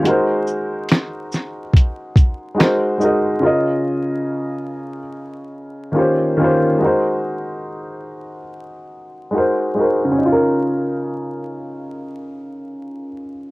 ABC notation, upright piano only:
X:1
M:4/4
L:1/8
Q:"Swing 16ths" 1/4=71
K:Db
V:1 name="Upright piano"
[A,EGBc]4 z2 [A,EGBc] [A,EGBe] | [D,DFBe]4 z2 [E,B,DF=Gc] [E,B,DFGc] | [A,EGBc]4 z2 [A,EGBc] [A,EGBc] | [D,DEFB]8 |]